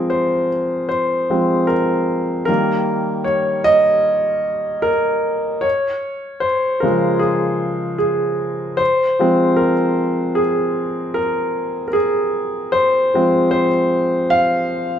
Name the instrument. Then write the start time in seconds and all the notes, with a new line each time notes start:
grand piano
Already playing: F3 G#3 C4 G#4 A#4 C5
0.10 C5
0.89 C5
1.30 F3 G#3 C4
1.67 A#4
2.45 D#3 G3 A#3 A#4
3.24 C#5
3.64 D#5
4.82 A#4
5.61 C#5
6.40 C5
6.80 C#3 F3 G#3 A#4
7.19 G#4
7.98 G#4
8.77 C5
9.19 F3 G#3 C4
9.56 A#4
10.35 G#4
11.14 A#4
11.88 A#4
11.93 G#4
12.72 C5
13.14 F3 G#3 C4
13.51 C5
14.30 F5